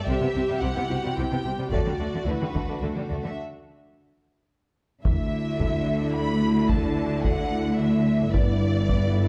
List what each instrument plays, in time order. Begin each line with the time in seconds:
0.07 double bass section C2, cello section C3, french horn section G3 C5, violin section C4 G4 E5, viola section G4
0.21 cello section C3, violin section B3
0.34 double bass section C2, cello section C3, violin section C4
0.49 cello section C3, violin section G3
0.62 double bass section C2, cello section C3, violin section C4 F#5, viola section E4
0.77 cello section C3, violin section B3
0.90 double bass section C2, cello section C3, violin section C4, viola section F#4
1.05 cello section C3, violin section G3
1.16 double bass section C2, cello section C3, violin section C4 G5, viola section E4
1.31 cello section C3, violin section B3
1.43 double bass section C2, cello section C3, violin section C4, viola section G4
1.58 cello section C3, violin section G3
1.70 double bass section D2, cello section D3, french horn section F#3 A4, violin section A3 F#4 D5, viola section F#4, taiko
1.86 cello section D3, violin section G3
1.99 double bass section D2, cello section D3, violin section A3
2.14 cello section D3, violin section A3
2.25 double bass section D2, cello section D3, violin section A3 B4, viola section E4
2.41 cello section D3, violin section G3
2.53 double bass section D2, cello section D3, violin section A3, viola section D4, taiko
2.68 cello section D3, violin section A3
2.82 double bass section D2, cello section D3, violin section A3 A4
2.96 cello section D3, violin section G3
3.09 double bass section D2, cello section D3, violin section A3
3.23 cello section D3, violin section A3 E5
5.04 double bass section D2, cello section D3, trombone section D3 A3, viola section A3 E4, french horn section D4 E4, violin section E5, taiko
5.60 taiko
6.14 violin section B5
6.69 violin section A5, taiko
7.23 violin section F#5, taiko
7.78 violin section E5
8.33 double bass section G1, cello section G2, trombone section D3 B3, viola section B3 E4, french horn section D4 E4, violin section D5, taiko
8.89 taiko